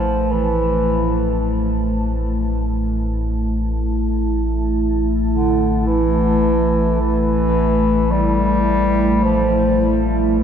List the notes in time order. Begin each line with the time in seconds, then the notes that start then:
Already playing: A1 F3 A3 E4 E5 A5
0.32 E3
5.30 D3
5.86 E3
7.00 E3
8.11 G3
9.23 F3
10.33 E3